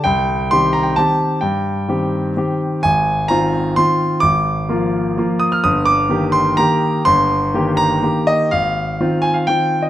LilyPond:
<<
  \new Staff \with { instrumentName = "Grand piano" } { \time 3/4 \key c \dorian \tempo 4 = 127 g''4 c'''8 bes''16 g''16 a''4 | g''2~ g''8 r8 | \key ees \major aes''4 bes''4 c'''4 | d'''2~ d'''8 ees'''16 f'''16 |
ees'''8 d'''4 c'''8 bes''4 | c'''4. bes''4 ees''8 | f''4. aes''16 f''16 g''8. ees''16 | }
  \new Staff \with { instrumentName = "Grand piano" } { \time 3/4 \key c \dorian c,4 <ees c' g'>4 <ees c' g'>4 | g,4 <ees c' g'>4 <ees c' g'>4 | \key ees \major aes,,4 <ees c' f'>4 <ees c' f'>4 | aes,,4 <f bes f'>4 <f bes f'>4 |
g,,4 <ees bes g'>4 <ees bes g'>4 | g,,4 <ees bes g'>4 <ees bes g'>4 | aes,,4 <ees c' f'>4 <ees c' f'>4 | }
>>